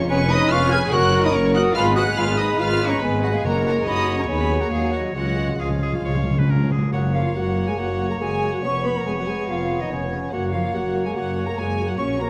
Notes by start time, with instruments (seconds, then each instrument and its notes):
Already playing: bassoon G#3
0.09 double bass section F1, viola section B3 B4, cello section C#4, french horn section C#4, oboe B4, violin section C#5 C#6, flute G#5
0.20 viola section C#4 C#5
0.29 viola section B3 B4, cello section D#4, violin section D#5 D#6, flute B5
0.40 viola section C#4 C#5
0.51 double bass section F1, viola section B3 B4, cello section F4, violin section F5 F6, flute C#6
0.61 viola section C#4 C#5
0.70 viola section B3 B4, cello section G#4, violin section G#5 G#6, flute F6
0.81 viola section C#4 C#5
0.91 double bass section F#1, timpani F#2, bassoon F#3, viola section A#3 A#4, cello section F#4, french horn section A#4, oboe A#4, violin section F#5 F#6, flute C#6
1.02 viola section C#4 C#5
1.13 viola section A#3 A#4
1.23 viola section C#4 C#5, cello section D#4, violin section D#5 D#6, flute B5
1.31 double bass section F#1, viola section A#3 A#4, cello section C#4, violin section C#5 C#6, flute A#5
1.44 viola section C#4 C#5
1.53 viola section A#3 A#4, cello section F#4, violin section F#5 F#6, flute D#6
1.64 viola section C#4 C#5
1.72 double bass section G#1, bassoon G#3, viola section G#3 B4, cello section F4, french horn section G#4, oboe B4, violin section F5 F6, flute B5
1.86 viola section B3 G#4
1.94 viola section G#3 B4, cello section F#4, violin section F#5 F#6, flute D#6
2.07 viola section B3 G#4
2.16 double bass section G#1, viola section G#3 B4, cello section F4, violin section F5 F6, flute B5
2.27 viola section B3 G#4
2.36 viola section G#3 B4, cello section D#4, violin section D#5 D#6, flute B5
2.49 viola section B3 G#4
2.57 double bass section G#1, viola section G#3 B4, cello section F4, french horn section F4, violin section F5 F6, flute B5
2.70 viola section B3 G#4
2.81 viola section G#3 B4
2.87 cello section C#4, violin section C#5 C#6, flute A#5
2.91 viola section B3 G#4
3.00 double bass section G#1, viola section G#3 B4, cello section B3, french horn section G#4, violin section B4 B5, flute G#5
3.12 viola section B3 G#4
3.21 cello section F#3, viola section G#3 B4, violin section F#4 F#5, flute D#5
3.31 cello section G#3, viola section B3 G#4, violin section G#4 G#5, flute F5
3.42 double bass section F#1, timpani F#2, cello section A#3, viola section A#3 F#4, violin section A#4 A#5, french horn section A#4, oboe C#5, flute F#5
3.55 viola section C#4 A#4
3.63 cello section A#3, viola section A#3 F#4, violin section A#4 A#5, flute F#5
3.76 viola section C#4 A#4
3.85 double bass section F#1, viola section A#3 F#4, cello section D#4, french horn section F#4, violin section D#5 D#6, flute B5
3.97 viola section C#4 A#4
4.08 viola section A#3 F#4
4.17 cello section C#4, viola section C#4 A#4, violin section C#5 C#6, flute A#5
4.28 double bass section D#2, bassoon F#3, cello section B3, viola section D#4 F#4, french horn section G#4, violin section B4 B5, flute G#5
4.40 viola section C#4 D#4
4.50 viola section D#4 F#4
4.59 cello section A#3, viola section C#4 D#4, violin section A#4 A#5, flute F#5
4.69 double bass section D#2, cello section G#3, viola section D#4 F#4, french horn section F#4, violin section G#4 G#5, flute F5
4.83 viola section C#4 D#4
4.91 cello section F#3, viola section D#4 F#4, violin section F#4 F#5, flute D#5
5.04 viola section C#4 D#4
5.13 double bass section C#2, timpani C#3, cello section F#3, bassoon G#3, french horn section F4, viola section F4 G#4, violin section F#4 F#5, flute D#5
5.23 timpani C#3, viola section C#4 F4
5.31 timpani C#3
5.37 timpani C#3, viola section F4 G#4
5.47 timpani C#3, viola section C#4 F4
5.54 timpani C#3
5.59 double bass section C#2, timpani C#3, cello section F3, viola section F4 G#4, violin section F4 F5, oboe G#4, flute C#5
5.70 timpani C#3, viola section C#4 F4
5.77 timpani C#3
5.82 timpani C#3, viola section F4 G#4, oboe G#4
5.93 timpani C#3, viola section C#4 F4
6.00 double bass section C#2, timpani C#3, viola section F4 G#4
6.05 timpani C#3, oboe C#5
6.15 timpani C#3, viola section C#4 F4
6.23 timpani C#3, viola section F4 G#4
6.31 timpani C#3
6.38 timpani C#3, viola section C#4 F4, oboe B4
6.48 double bass section C#2, timpani C#3, viola section F4 G#4, oboe A#4
6.56 timpani C#3
6.60 timpani C#3, viola section C#4 F4
6.70 timpani C#3, viola section F4 G#4, oboe G#4
6.78 timpani C#3
6.83 viola section C#4 F4
6.92 double bass section F#1, cello section F#3, bassoon A#3, viola section A#3 F#4, french horn section F#4, violin section C#5 F#5, oboe C#5, flute F#5
7.13 cello section F3, viola section A#3 F#4, french horn section F4, violin section C#5 F5, flute F5
7.35 double bass section F#1, cello section F#3, viola section A#3 F#4, french horn section F#4, violin section C#5 F#5, flute F#5
7.57 viola section A#3 F#4, violin section C#5
7.67 cello section G#3, french horn section G#4, violin section G#5, flute G#5
7.78 double bass section F#1, cello section F#3, viola section A#3 F#4, french horn section F#4, violin section C#5 F#5, flute F#5
8.00 viola section A#3 F#4, violin section C#5
8.10 cello section A#3, french horn section A#4, violin section A#5, flute A#5
8.20 double bass section F#1, cello section G#3, viola section A#3 F#4, french horn section G#4, violin section C#5 G#5, flute G#5
8.42 viola section A#3 F#4, violin section C#5
8.52 cello section F#3, french horn section F#4, violin section F#5, flute F#5
8.63 double bass section F1, viola section B3 G#4, bassoon B3, cello section C#4, french horn section C#5, violin section C#5 C#6, flute C#6
8.84 cello section B3, viola section B3 G#4, french horn section B4, violin section C#5 B5, flute B5
8.95 cello section A#3, french horn section A#4, violin section A#5, flute A#5
9.05 double bass section F1, cello section G#3, viola section B3 G#4, french horn section G#4, violin section C#5 G#5, flute G#5
9.16 cello section F#3, french horn section F#4, violin section F#5, flute F#5
9.26 cello section G#3, viola section B3 G#4, french horn section G#4, violin section C#5 G#5, flute G#5
9.47 double bass section F1, cello section F3, viola section B3 G#4, french horn section F4, violin section C#5 F5, flute F5
9.70 viola section B3 G#4, violin section C#5
9.79 cello section D#3, french horn section D#4, violin section D#5, flute D#5
9.89 double bass section F1, cello section C#3, viola section B3 G#4, french horn section C#4, violin section C#5, flute C#5
10.11 viola section B3 G#4, violin section C#5
10.30 double bass section F#1, cello section F#3, bassoon A#3, viola section A#3 F#4, french horn section F#4, violin section C#5 F#5, oboe C#5, flute F#5
10.51 cello section F3, viola section A#3 F#4, french horn section F4, violin section C#5 F5, flute F5
10.72 double bass section F#1, cello section F#3, viola section A#3 F#4, french horn section F#4, violin section C#5 F#5, flute F#5
10.95 viola section A#3 F#4, violin section C#5
11.05 cello section G#3, french horn section G#4, violin section G#5, flute G#5
11.14 double bass section F#1, cello section F#3, viola section A#3 F#4, french horn section F#4, violin section C#5 F#5, flute F#5
11.37 viola section A#3 F#4, violin section C#5
11.45 cello section A#3, french horn section A#4, violin section A#5, flute A#5
11.56 double bass section F#1, cello section G#3, viola section A#3 F#4, french horn section G#4, violin section C#5 G#5, flute G#5
11.77 viola section A#3 F#4, violin section C#5
11.87 cello section F#3, french horn section F#4, violin section F#5, flute F#5
11.97 double bass section A#1, bassoon F#3, viola section A#3 F#4, cello section C#4, violin section C#5 C#6, french horn section C#5, flute C#6
12.18 cello section A#3, viola section A#3 F#4, french horn section A#4, violin section C#5 A#5, flute A#5